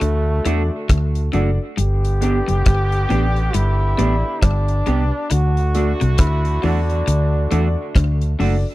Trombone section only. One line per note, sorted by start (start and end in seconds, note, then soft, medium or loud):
0.00 1.29 D3 medium
0.00 1.30 A3 loud
0.00 1.30 F#4 loud
1.79 4.83 D3 loud
1.79 4.83 B3 medium
1.79 4.83 G4 loud
5.30 8.35 D3 medium
5.30 8.35 A3 medium
5.30 8.35 F#4 loud